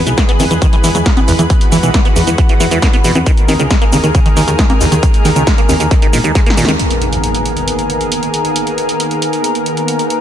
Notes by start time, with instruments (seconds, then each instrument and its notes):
Already playing: analog synth pad E3 G#3 B3 G#4 B4
0.07 fm bass B1, acid bass E3, closed hi-hat, shaker
0.18 acid bass A#3, kick, snare, closed hi-hat, shaker
0.29 acid bass B3, closed hi-hat
0.40 fm bass E2, acid bass D#3, open hi-hat, high conga, shaker
0.51 fm bass E2, acid bass E3, closed hi-hat, shaker
0.62 acid bass D#3, kick, closed hi-hat, shaker
0.73 acid bass E3, closed hi-hat
0.84 fm bass E2, acid bass E3, open hi-hat, shaker
0.95 fm bass E2, acid bass F#3, closed hi-hat, shaker
1.06 acid bass A#3, kick, snare, closed hi-hat, shaker
1.17 acid bass B3, closed hi-hat, high conga
1.28 acid bass E2, fm bass E2, open hi-hat, shaker
1.39 fm bass E2, acid bass E3, closed hi-hat, shaker
1.50 acid bass E3, analog synth pad F#4, kick, closed hi-hat, shaker
1.61 closed hi-hat
1.72 fm bass E2, acid bass E3, open hi-hat, shaker
1.83 fm bass B1, acid bass E3, closed hi-hat, shaker
1.94 acid bass A#3, kick, snare, closed hi-hat, shaker
2.05 acid bass B3, closed hi-hat
2.16 fm bass E2, acid bass E2, open hi-hat, shaker
2.27 fm bass E2, acid bass E3, closed hi-hat, shaker
2.38 acid bass E3, kick, closed hi-hat, shaker
2.49 acid bass E3, closed hi-hat
2.60 fm bass E2, acid bass E3, open hi-hat, shaker
2.71 fm bass E2, acid bass E3, closed hi-hat, shaker
2.82 acid bass A#3, kick, snare, closed hi-hat, shaker
2.93 acid bass B3, closed hi-hat
3.04 fm bass E2, acid bass B2, open hi-hat, shaker
3.15 fm bass E2, acid bass E3, closed hi-hat, high conga, shaker
3.26 acid bass D#3, analog synth pad D#3 G#3 A#3 G#4 A#4, kick, closed hi-hat, shaker
3.37 closed hi-hat
3.48 fm bass D#2, acid bass D#3, open hi-hat, high conga, shaker
3.60 fm bass C#2, acid bass D#3, closed hi-hat, shaker
3.71 acid bass G#3, kick, snare, closed hi-hat, shaker
3.82 acid bass A#3, closed hi-hat
3.93 fm bass D#2, acid bass C#3, open hi-hat, high conga, shaker
4.04 fm bass D#2, acid bass D#3, closed hi-hat, shaker
4.15 acid bass C#3, kick, closed hi-hat, shaker
4.26 acid bass D#3, closed hi-hat
4.37 fm bass D#2, acid bass D#3, open hi-hat, shaker
4.48 fm bass D#2, acid bass D#3, closed hi-hat, shaker
4.59 acid bass G#3, kick, snare, closed hi-hat, shaker
4.70 acid bass A#3, closed hi-hat, high conga
4.81 fm bass D#2, acid bass D#2, open hi-hat, shaker
4.92 fm bass D#2, acid bass D#3, closed hi-hat, shaker
5.03 acid bass D#3, kick, closed hi-hat, shaker
5.14 closed hi-hat
5.25 fm bass D#2, acid bass D#3, open hi-hat, shaker
5.36 fm bass C#2, acid bass D#3, closed hi-hat, shaker
5.47 acid bass G#3, kick, snare, closed hi-hat, shaker
5.58 acid bass A#3, closed hi-hat
5.69 fm bass D#2, acid bass D#2, open hi-hat, high conga, shaker
5.80 fm bass D#2, acid bass D#3, closed hi-hat, shaker
5.91 acid bass D#3, kick, snare, closed hi-hat, shaker
6.02 acid bass D#3, closed hi-hat
6.13 fm bass A#1, acid bass D#3, open hi-hat, shaker
6.24 fm bass D#2, acid bass D#3, closed hi-hat, shaker
6.35 acid bass G#3, kick, snare, closed hi-hat, shaker
6.46 acid bass A#3, snare, closed hi-hat
6.57 fm bass D#2, acid bass A#2, open hi-hat, shaker
6.65 fm bass D#2, acid bass D#3, snare, closed hi-hat, high conga, shaker
6.79 analog synth pad D#3 A#3 B3 G#4 A#4, closed hi-hat, impact
6.91 closed hi-hat
7.02 closed hi-hat
7.13 closed hi-hat
7.24 closed hi-hat
7.35 closed hi-hat
7.46 closed hi-hat
7.57 closed hi-hat
7.68 closed hi-hat
7.79 closed hi-hat
7.90 closed hi-hat
8.01 closed hi-hat
8.12 closed hi-hat
8.23 closed hi-hat
8.34 closed hi-hat
8.45 closed hi-hat
8.56 closed hi-hat
8.67 closed hi-hat
8.78 closed hi-hat
8.89 closed hi-hat
9.00 closed hi-hat
9.11 closed hi-hat
9.22 closed hi-hat
9.33 closed hi-hat
9.44 closed hi-hat
9.55 closed hi-hat
9.66 closed hi-hat
9.77 closed hi-hat
9.88 closed hi-hat
9.99 closed hi-hat
10.10 closed hi-hat